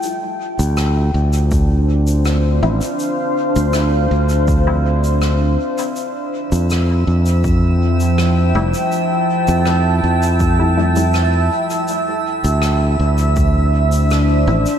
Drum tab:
SH |x--xx--xx--xx--x|x--xx--xx--xx--x|x--xx--xx--xx--x|x--xx--xx--xx--x|
SD |----r-------r---|----r-------r---|----r-------r---|----r-------r---|
BD |--------o-------|--------o-------|--------o-------|--------o-------|

SH |x--xx--xx--xx--x|
SD |----r-------r---|
BD |--------o-------|